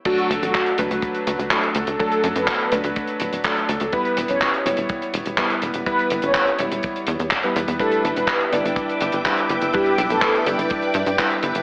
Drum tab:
CC |x---------------|----------------|----------------|----------------|
HH |xxxxxxxxxxxxxxxx|xxxxxxxxxxxxxxxx|xxxxxxxxxxxxxxxx|xxxxxxxxxxxxxxxx|
CP |----x-------x---|----x-------x---|----x-------x---|----x-------x---|
BD |o---o---o---o---|o---o---o---o---|o---o---o---o---|o---o---o---o---|

CC |----------------|----------------|
HH |xxxxxxxxxxxxxxxx|xxxxxxxxxxxxxxxx|
CP |----x-------x---|----x-------x---|
BD |o---o---o---o---|o---o---o---o---|